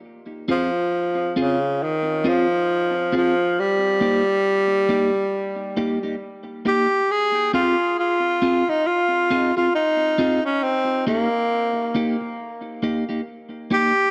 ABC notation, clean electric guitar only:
X:1
M:4/4
L:1/16
Q:"Swing 16ths" 1/4=68
K:Fm
V:1 name="Clean electric guitar"
z2 [CFA] z3 [CFA] z3 [CFA] z3 [CFA] z | z2 [B,EG] z3 [B,EG] z3 [B,EG] [B,EG] z2 [B,EG] z | z2 [CFA] z3 [CFA] z3 [CFA] [CFA] z2 [CFA] z | z2 [B,EG] z3 [B,EG] z3 [B,EG] [B,EG] z2 [B,EG] z |]